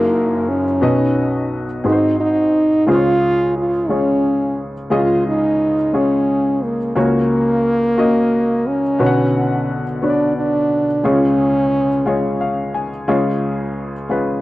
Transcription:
Already playing: F#1 F#2 A#3 D#4 E4 F#4 G#4 A#4
0.49 C#4
0.81 B1 B2 B3 D#4 F#4 B4 D#5
1.84 G#1 G#2 C4 D#4 F#4 G#4 B4
1.92 C5
2.20 D#4
2.87 C#2 C#3 G#3 C#4 F4 G#4 C5
2.95 C#5
3.58 F4
3.89 G#3 C#4 F4 G#4 C#5
4.90 C#2 C#3 G#3 C#4 F4 G#4 D#5
5.28 D#4
5.93 G#3 C#4 F4 G#4 C#5
6.64 A#3
6.95 C#2 C#3 A#3 C#4 F#4 A#4 C#5
7.98 A#3 C#4 F#4 A#4 D#5
8.68 C#4
8.99 B1 B2 D3 B3 F#4 B4 C#5
9.06 F#5
10.02 B3 D4 F#4 B4 C#5
10.10 D5
10.37 D4
11.04 C#2 C#3 G#3 C#4 F4 G#4 C#5
12.06 G#3 C#4 F4 G#4 C#5
12.41 F5
12.74 G#5
13.08 C#2 C#3 G#3 C#4 F4 G#4 C#5
14.09 G#3 C#4 F4 G#4 B4

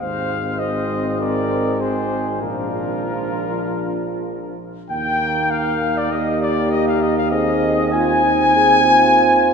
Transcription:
0.01 G#1 G#3 C4 C5 F5
0.59 C5 D#5
1.20 A#4 D5
1.80 G#4 C5
2.41 A#1 F3 D4 F4 A#4
4.90 D#2 A#3 G5
5.51 F5
5.96 D5
6.12 A#3 G4 D#5
6.41 D5
6.71 D#5
6.87 F5
7.02 D#5
7.17 F5
7.31 C4 G#4 D#5
7.93 C4 F4 G#5
8.24 D#4
8.55 G#4
8.84 F4

